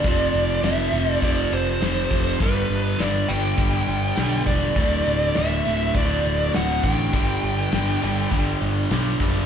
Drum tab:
HH |x-x-x-x-x-x-x-x-|x-x-x-x-x-x-x-x-|x-x-x-x-x-x-x-x-|x-x-x-x-x-x-x-x-|
SD |----o-------o---|----o-o--o--o---|----o-------o---|----o-o--o--o---|
BD |o-------o-----o-|o-------o-----o-|o-------o-----o-|o-------o-----o-|